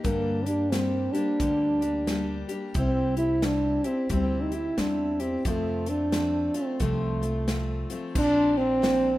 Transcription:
0.04 0.46 G2 medium
0.04 1.07 G2 medium
0.04 0.46 D3 medium
0.04 0.46 G3 medium
0.04 0.47 A#3 medium
0.04 0.46 D4 medium
0.04 0.44 G4 medium
0.04 kick loud
0.04 closed hi-hat medium
0.45 0.71 G3 soft
0.45 0.72 A#3 soft
0.45 0.74 D4 medium
0.45 0.73 D4 soft
0.45 0.72 G4 soft
0.45 closed hi-hat medium
0.72 1.14 G3 medium
0.72 1.14 A#3 medium
0.72 1.14 C4 medium
0.72 1.13 D4 medium
0.72 1.12 G4 medium
0.72 snare loud
0.72 closed hi-hat medium
1.12 1.40 A#3 soft
1.12 2.48 D4 loud
1.12 1.40 D4 medium
1.12 1.39 G4 medium
1.12 closed hi-hat medium
1.17 1.40 G3 soft
1.40 2.42 D2 medium
1.40 1.82 G2 medium
1.40 1.82 D3 medium
1.40 1.82 G3 medium
1.40 1.82 A#3 medium
1.40 1.81 D4 medium
1.40 1.80 G4 medium
1.40 kick loud
1.40 closed hi-hat medium
1.81 2.06 G3 soft
1.81 2.07 A#3 medium
1.81 2.08 D4 medium
1.81 2.07 G4 medium
1.81 closed hi-hat medium
2.07 2.49 G3 medium
2.07 2.50 A#3 medium
2.07 2.49 D4 medium
2.07 2.47 G4 medium
2.07 snare loud
2.07 closed hi-hat medium
2.48 2.74 G3 soft
2.48 2.75 A#3 medium
2.48 2.75 D4 soft
2.48 2.75 G4 medium
2.48 closed hi-hat medium
2.74 3.77 C2 medium
2.74 3.16 C3 medium
2.74 3.17 G3 medium
2.74 3.14 C4 loud
2.74 3.17 C4 medium
2.74 3.17 E4 medium
2.74 3.15 G4 medium
2.74 kick loud
2.74 closed hi-hat medium
3.16 3.42 C4 soft
3.16 3.46 E4 loud
3.16 3.43 E4 medium
3.16 3.42 G4 medium
3.16 closed hi-hat medium
3.42 3.84 G3 medium
3.42 3.85 C4 medium
3.42 3.88 D4 medium
3.42 3.84 E4 medium
3.42 3.83 G4 medium
3.42 snare loud
3.42 closed hi-hat medium
3.84 4.11 C4 medium
3.84 4.10 C4 soft
3.84 4.10 E4 soft
3.84 4.10 G4 medium
3.84 closed hi-hat medium
4.09 4.67 D2 medium
4.09 4.52 C3 medium
4.09 4.52 G3 medium
4.09 4.52 C4 medium
4.09 4.44 C4 medium
4.09 4.52 E4 medium
4.09 4.50 G4 medium
4.09 kick loud
4.09 closed hi-hat medium
4.43 4.55 D#4 medium
4.52 4.78 C4 soft
4.52 4.78 E4 soft
4.52 4.80 E4 medium
4.52 4.78 G4 medium
4.52 closed hi-hat medium
4.77 5.35 E2 medium
4.77 5.20 G3 medium
4.77 5.20 C4 medium
4.77 5.22 D4 medium
4.77 5.20 E4 medium
4.77 5.18 G4 medium
4.77 snare loud
4.77 closed hi-hat medium
5.20 5.46 C4 medium
5.20 5.46 C4 soft
5.20 5.46 E4 soft
5.20 5.45 G4 medium
5.20 closed hi-hat medium
5.45 6.48 F2 medium
5.45 5.87 F2 medium
5.45 5.88 C3 medium
5.45 5.88 F3 medium
5.45 5.91 A3 medium
5.45 5.88 A3 medium
5.45 5.87 C4 medium
5.45 5.86 F4 medium
5.45 kick loud
5.45 closed hi-hat medium
5.86 6.13 A3 soft
5.86 6.14 C4 soft
5.86 6.57 D4 medium
5.86 6.13 F4 medium
5.86 closed hi-hat medium
5.91 6.11 F3 soft
6.12 6.55 F3 medium
6.12 6.55 A3 medium
6.12 6.55 C4 medium
6.12 6.53 F4 medium
6.12 snare loud
6.12 closed hi-hat medium
6.54 6.80 F3 soft
6.54 6.81 A3 soft
6.54 6.83 C4 medium
6.54 6.81 C4 soft
6.54 6.81 F4 medium
6.54 closed hi-hat medium
6.80 7.83 C2 medium
6.80 7.22 F2 medium
6.80 7.23 C3 medium
6.80 7.23 F3 medium
6.80 7.90 A3 medium
6.80 7.22 A3 medium
6.80 7.22 C4 medium
6.80 7.20 F4 medium
6.80 kick loud
6.80 closed hi-hat medium
7.22 7.46 F3 soft
7.22 7.47 A3 soft
7.22 7.49 C4 medium
7.22 7.48 F4 soft
7.22 closed hi-hat medium
7.47 7.90 F3 medium
7.47 7.90 A3 medium
7.47 7.90 C4 medium
7.47 7.89 F4 medium
7.47 snare loud
7.47 closed hi-hat medium
7.90 8.15 F3 soft
7.90 8.16 A3 soft
7.90 8.15 C4 medium
7.90 8.16 F4 medium
7.90 closed hi-hat medium
8.15 9.18 A#1 medium
8.15 8.57 A#2 medium
8.15 8.58 F3 medium
8.15 8.58 C4 medium
8.15 8.59 D4 loud
8.15 8.58 D4 medium
8.15 8.56 F4 medium
8.15 kick loud
8.15 crash loud
8.57 9.18 C4 loud
8.57 8.82 C4 soft
8.57 8.83 D4 soft
8.57 8.83 F4 medium
8.82 9.18 A#2 medium
8.82 9.18 F3 medium
8.82 9.18 C4 medium
8.82 9.18 D4 medium
8.82 9.18 F4 medium
8.82 snare loud
8.82 open hi-hat medium

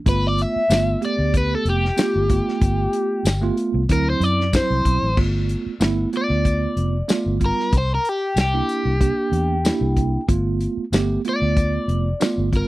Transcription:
0.06 0.43 G1 loud
0.06 0.61 A3 medium
0.06 0.61 B3 medium
0.06 0.62 F4 medium
0.06 0.27 B4 loud
0.06 kick loud
0.06 closed hi-hat medium
0.27 0.42 D5 medium
0.38 1.02 E5 loud
0.38 closed hi-hat medium
0.56 muted fingered electric bass stroke soft
0.70 0.94 G1 loud
0.70 0.97 A3 medium
0.70 0.98 B3 medium
0.70 0.98 F4 loud
0.70 snare loud
0.70 closed hi-hat medium
0.70 tambourine loud
1.01 1.84 A3 medium
1.01 1.84 B3 medium
1.01 1.84 G4 medium
1.01 1.35 D5 medium
1.01 closed hi-hat medium
1.19 1.54 D2 medium
1.34 1.53 B4 loud
1.34 kick medium
1.34 closed hi-hat medium
1.55 1.67 A4 loud
1.65 1.90 F1 loud
1.65 closed hi-hat medium
1.70 3.55 G4 loud
1.85 snare soft
1.97 2.25 A3 medium
1.97 2.25 B3 medium
1.97 2.25 F4 medium
1.97 snare loud
1.97 closed hi-hat medium
1.97 tambourine loud
2.16 2.40 G1 medium
2.28 3.24 A3 medium
2.28 3.24 B3 medium
2.28 3.24 F4 medium
2.28 kick medium
2.28 closed hi-hat medium
2.49 snare soft
2.61 2.86 G1 loud
2.61 kick loud
2.61 closed hi-hat medium
2.93 closed hi-hat medium
3.25 3.49 G1 loud
3.25 snare loud
3.25 closed hi-hat medium
3.25 tambourine loud
3.42 3.82 A3 loud
3.42 3.82 B3 medium
3.42 3.83 F4 loud
3.57 closed hi-hat medium
3.74 3.85 C2 loud
3.89 4.13 D2 loud
3.89 4.44 F#3 medium
3.89 4.44 C4 medium
3.89 4.45 E4 medium
3.89 4.08 A#4 loud
3.89 kick medium
3.89 closed hi-hat medium
4.10 4.24 C5 medium
4.20 4.58 F#2 loud
4.20 4.53 D5 loud
4.20 closed hi-hat medium
4.41 snare soft
4.53 5.08 F#3 medium
4.53 5.08 C4 medium
4.53 5.08 E4 loud
4.53 5.17 C5 loud
4.53 kick medium
4.53 snare loud
4.53 closed hi-hat medium
4.53 tambourine loud
4.70 4.84 C2 medium
4.85 5.01 B1 loud
4.85 kick medium
4.85 closed hi-hat medium
5.03 5.16 A1 medium
5.17 5.54 G1 loud
5.17 5.72 A3 medium
5.17 5.72 B3 medium
5.17 5.73 F4 medium
5.17 kick loud
5.17 crash medium
5.49 closed hi-hat medium
5.66 muted fingered electric bass stroke soft
5.80 6.05 G1 medium
5.80 6.08 A3 medium
5.80 6.08 B3 medium
5.80 6.09 E4 loud
5.80 snare loud
5.80 closed hi-hat medium
5.80 tambourine loud
6.13 6.95 A3 medium
6.13 6.96 B3 medium
6.13 6.96 F4 medium
6.13 closed hi-hat medium
6.17 7.39 D5 medium
6.30 6.65 D2 medium
6.45 kick medium
6.45 closed hi-hat medium
6.77 7.01 F1 medium
6.77 closed hi-hat medium
7.08 7.36 A3 medium
7.08 7.36 B3 medium
7.08 7.37 F4 medium
7.08 snare loud
7.08 closed hi-hat medium
7.08 tambourine loud
7.26 7.50 G1 medium
7.40 7.72 G3 medium
7.40 7.73 B3 medium
7.40 7.73 F4 medium
7.40 kick medium
7.40 closed hi-hat medium
7.46 7.74 A#4 medium
7.60 snare soft
7.73 7.97 C2 loud
7.73 kick medium
7.73 closed hi-hat medium
7.78 7.92 C5 medium
7.95 8.09 A#4 medium
8.05 closed hi-hat medium
8.09 8.38 G4 medium
8.36 8.60 C2 medium
8.36 snare loud
8.36 closed hi-hat medium
8.36 tambourine loud
8.41 10.26 G4 medium
8.54 8.94 A#3 medium
8.54 8.94 D4 medium
8.54 8.94 E4 medium
8.69 closed hi-hat medium
8.85 9.10 C2 medium
9.00 9.55 A#3 medium
9.00 9.56 D4 medium
9.00 9.56 G4 medium
9.00 kick medium
9.00 closed hi-hat medium
9.32 9.69 E2 medium
9.32 closed hi-hat medium
9.65 10.20 A#3 medium
9.65 10.20 D4 medium
9.65 10.20 E4 loud
9.65 snare loud
9.65 closed hi-hat medium
9.65 tambourine loud
9.81 10.16 C2 loud
9.97 kick medium
9.97 closed hi-hat medium
10.28 10.66 G1 loud
10.28 10.83 A3 medium
10.28 10.84 B3 medium
10.28 10.84 F4 medium
10.28 kick loud
10.28 closed hi-hat medium
10.61 closed hi-hat medium
10.77 muted fingered electric bass stroke soft
10.92 11.16 G1 medium
10.92 11.20 A3 loud
10.92 11.20 B3 medium
10.92 11.21 G4 loud
10.92 snare loud
10.92 closed hi-hat medium
10.92 tambourine loud
11.25 12.07 A3 medium
11.25 12.07 B3 medium
11.25 12.08 F4 medium
11.25 closed hi-hat medium
11.29 12.51 D5 medium
11.42 11.77 D2 medium
11.57 kick medium
11.57 closed hi-hat medium
11.88 12.12 F1 loud
11.88 closed hi-hat medium
12.20 12.48 A3 medium
12.20 12.48 B3 medium
12.20 12.48 F4 loud
12.20 snare loud
12.20 closed hi-hat medium
12.20 tambourine loud
12.38 12.62 G1 medium
12.52 12.68 G3 medium
12.52 12.68 B3 medium
12.52 12.68 F4 medium
12.52 kick medium
12.52 closed hi-hat medium
12.57 12.68 A#4 medium

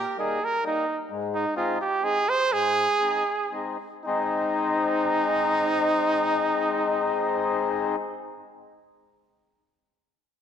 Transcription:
0.00 0.16 G4 medium
0.17 0.39 G3 medium
0.17 0.39 A#3 medium
0.17 0.40 D#4 loud
0.17 0.46 G#4 loud
0.45 0.65 A#4 loud
0.63 0.85 G3 medium
0.63 0.85 A#3 medium
0.63 0.85 D#4 medium
0.63 0.98 D#4 medium
1.11 1.45 G#2 loud
1.35 1.55 D#4 medium
1.56 1.78 G#3 medium
1.56 1.78 C4 medium
1.56 1.79 D#4 loud
1.56 1.79 F4 medium
1.81 2.06 G4 loud
2.02 2.24 G#3 medium
2.02 2.25 C4 medium
2.02 2.25 D#4 medium
2.02 2.31 G#4 loud
2.29 2.54 C5 loud
2.51 2.87 G#2 medium
2.51 3.52 G#4 loud
3.00 3.23 G#3 medium
3.00 3.23 C4 medium
3.00 3.24 D#4 medium
3.52 3.76 G#3 medium
3.52 3.77 C4 medium
3.52 3.77 D#4 medium
4.05 7.96 G#3 loud
4.05 7.95 C4 medium
4.05 7.95 D#4 loud
4.05 7.96 D#4 loud

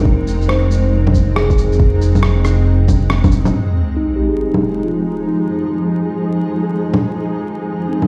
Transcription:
0.00 3.52 F1 medium
0.00 3.49 G#3 medium
0.00 3.49 C4 medium
0.00 0.38 D#4 medium
0.00 3.49 D#4 medium
0.00 0.82 A#4 medium
0.05 kick loud
0.27 shaker medium
0.41 shaker soft
0.48 1.69 C5 medium
0.48 cross-stick loud
0.71 shaker medium
1.07 low bongo medium
1.14 kick medium
1.14 shaker medium
1.36 2.56 G#4 medium
1.36 cross-stick loud
1.50 kick loud
1.50 shaker soft
1.58 shaker medium
1.72 shaker soft
1.80 kick loud
2.02 shaker medium
2.15 low bongo soft
2.15 shaker soft
2.23 cross-stick loud
2.45 cross-stick medium
2.45 shaker medium
2.88 kick medium
2.88 low bongo soft
2.88 shaker medium
3.10 3.71 C4 medium
3.10 cross-stick loud
3.24 kick loud
3.24 low bongo medium
3.24 shaker soft
3.31 shaker medium
3.45 low bongo medium
3.45 shaker soft
3.53 8.07 F3 medium
3.53 8.07 G#3 medium
3.53 8.07 D#4 medium
3.53 8.07 G#4 medium
3.53 sub drop medium
3.97 5.17 D#4 medium
4.16 5.28 G4 soft
4.29 5.43 G#4 soft
4.54 low bongo soft
4.84 6.04 F4 soft
5.27 6.47 D#4 soft
6.94 low bongo medium
7.88 8.07 C4 soft
7.88 8.07 D#4 medium
8.02 low bongo soft

